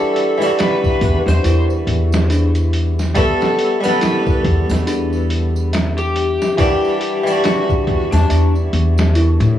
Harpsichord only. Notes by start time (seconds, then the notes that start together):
Already playing: E3 G3 D4 F#4
0.38 E3 G3
0.43 D4 F#4
3.15 G3 B3 F#4 A4
3.81 G3 B3
3.86 A4 F#5
6.58 E3 G3 D4
6.62 F#5
7.24 E3 G3
7.29 D4 F#4